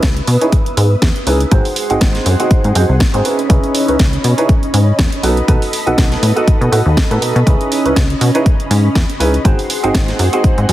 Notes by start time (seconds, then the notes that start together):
Already playing: B4 D#6 E6
0.03 C#2, kick, snare, closed hi-hat
0.17 closed hi-hat
0.27 B2, open hi-hat
0.41 C#4 D#4 E4 G#4 B4, closed hi-hat
0.52 kick, closed hi-hat
0.66 closed hi-hat
0.77 G#2, open hi-hat
1.02 E2, kick, snare, closed hi-hat
1.16 closed hi-hat
1.26 C#2 C#4 D#4 E4 G#4 B4, open hi-hat
1.40 closed hi-hat
1.51 G#1 C4 D#4 F#4 G#4 C5 F#5 C6, kick, closed hi-hat
1.65 open hi-hat
1.76 open hi-hat
1.90 G#1 C4 D#4 F#4 G#4 C5, closed hi-hat
2.01 G#1, kick, snare, closed hi-hat
2.15 snare, closed hi-hat
2.26 F#2, open hi-hat
2.39 C4 D#4 F#4 G#4 C5, closed hi-hat
2.51 kick, closed hi-hat
2.64 G#2, closed hi-hat
2.75 F#2 C4 D#4 F#4 G#4 C5, open hi-hat
2.89 C2
3.00 kick, snare, closed hi-hat
3.13 G#2 C4 D#4 F#4 G#4 C5, closed hi-hat
3.24 C#4 D#4 E4 G#4 B4 D#5 B5, open hi-hat
3.39 closed hi-hat
3.49 C#2 C#4 D#4 E4 G#4 B4, kick, closed hi-hat
3.64 closed hi-hat
3.75 open hi-hat
3.88 C#2 C#4 D#4 E4 G#4 B4, closed hi-hat
3.99 C#2, kick, snare, closed hi-hat
4.13 closed hi-hat
4.24 B2, open hi-hat
4.37 C#4 D#4 E4 G#4 B4, closed hi-hat
4.49 kick, closed hi-hat
4.63 closed hi-hat
4.74 G#2, open hi-hat
4.99 E2, kick, snare, closed hi-hat
5.12 closed hi-hat
5.23 B1 B3 D#4 F#4 A4 B4, open hi-hat
5.37 closed hi-hat
5.48 B1 B3 D#4 F#4 A4 B4, kick, closed hi-hat
5.62 open hi-hat
5.73 open hi-hat
5.86 B1 B3 D#4 F#4 A4 B4, closed hi-hat
5.98 B1, kick, snare, closed hi-hat
6.12 snare, closed hi-hat
6.22 A2, open hi-hat
6.36 B3 D#4 F#4 A4 B4, closed hi-hat
6.48 kick, closed hi-hat
6.61 B2, closed hi-hat
6.72 A2 B3 D#4 F#4 A4 B4, open hi-hat
6.86 D#2
6.97 kick, snare, closed hi-hat
7.10 A2 B3 D#4 F#4 A4 B4, closed hi-hat
7.21 B2 B3 D#4 F#4 A4 B4, open hi-hat
7.36 B2, closed hi-hat
7.46 C#2 C#4 D#4 E4 G#4 B4, kick, closed hi-hat
7.61 closed hi-hat
7.72 open hi-hat
7.85 C#2 C#4 D#4 E4 G#4 B4, closed hi-hat
7.96 C#2, kick, snare, closed hi-hat
8.10 closed hi-hat
8.21 B2, open hi-hat
8.34 C#4 D#4 E4 G#4 B4, closed hi-hat
8.46 kick, closed hi-hat
8.60 closed hi-hat
8.71 G#2, open hi-hat
8.95 E2, kick, snare, closed hi-hat
9.10 closed hi-hat
9.20 C#2 C#4 D#4 E4 G#4 B4, open hi-hat
9.34 closed hi-hat
9.45 G#1 C4 D#4 F#4 G#4 C5 F#5 C6, kick, closed hi-hat
9.59 open hi-hat
9.70 open hi-hat
9.83 G#1 C4 D#4 F#4 G#4 C5, closed hi-hat
9.94 G#1, kick, snare, closed hi-hat
10.08 snare, closed hi-hat
10.19 F#2, open hi-hat
10.33 C4 D#4 F#4 G#4 C5, closed hi-hat
10.44 kick, closed hi-hat
10.58 G#2, closed hi-hat
10.69 F#2 C4 D#4 F#4 G#4 C5, open hi-hat